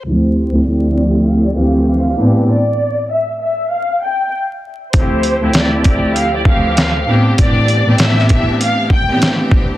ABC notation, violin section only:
X:1
M:4/4
L:1/16
Q:"Swing 16ths" 1/4=98
K:Dm
V:1 name="Violin section"
c4 d2 d2 f d f2 f2 z2 | d4 e2 e2 f2 g2 z4 | c4 d2 d2 f d f2 f2 z2 | d4 e2 e2 f2 g2 z4 |]